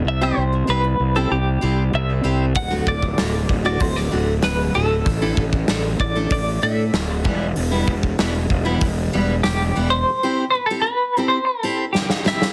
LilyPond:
<<
  \new Staff \with { instrumentName = "Clean electric guitar" } { \time 4/4 \key c \lydian \tempo 4 = 96 e''16 c''8. b'8. a'16 g'4 e''8. r16 | fis''8 d''4~ d''16 d''16 c''16 d''8. b'8 a'8~ | a'4. d''8 d''8 e''4 r8 | r2. g'8. c''16~ |
c''8. b'16 a'16 b'8. c''16 a'8. g'8 e''8 | }
  \new Staff \with { instrumentName = "Steel-string acoustic guitar" } { \time 4/4 \key c \lydian r16 <c' e' g' c''>16 r8 <c' e' g' c''>16 r8 <c' e' g' c''>16 r8 <c' e' g' c''>16 r8. <c' e' g' c''>16 r16 | r16 <a, d a fis'>16 r8 <a, d a fis'>16 r8 <a, d a fis'>16 r8 <a, d a fis'>16 r8. <a, d a fis'>16 r16 | r16 <a d' e' a'>16 r8 <a d' e' a'>16 r8 <a d' e' a'>16 r8 <a d' e' a'>16 r8. <e g b e'>16 r16 | r16 <e g b e'>16 r8 <e g b e'>16 r8 <e g b e'>16 r8 <e g b e'>16 r8. <e g b e'>16 r16 |
r16 <c' e' g' c''>16 r8 <c' e' g' c''>16 r8 <c' e' g' c''>16 r8 <c' e' g' c''>16 r8. <c' e' g' c''>16 r16 | }
  \new Staff \with { instrumentName = "Fingered electric bass" } { \clef bass \time 4/4 \key c \lydian c,8 c,8 c,8 c,8 c,8 c,8 c,8 c,8 | d,,8 d,,8 d,,8 d,,8 d,,8 d,,8 d,,8 d,,8 | a,,8 a,,8 a,,8 a,,8 a,,8 a,8 d,,8 e,,8 | e,,8 e,,8 e,,8 e,,8 e,,8 e,,8 e,,8 e,,8 |
r1 | }
  \new DrumStaff \with { instrumentName = "Drums" } \drummode { \time 4/4 r4 r4 r4 r4 | <hho bd>8 bd16 bd16 <hho sn>8 bd8 <hho bd>16 sn8. <hho sn>4 | <hho bd>8 bd16 bd16 <hho sn>8 bd8 <hho bd>4 <hho sn>8 bd8 | hho8 bd16 bd16 <hho sn>8 bd8 <hho bd>4 <hho sn>4 |
r4 r4 r4 sn16 sn16 sn16 sn16 | }
>>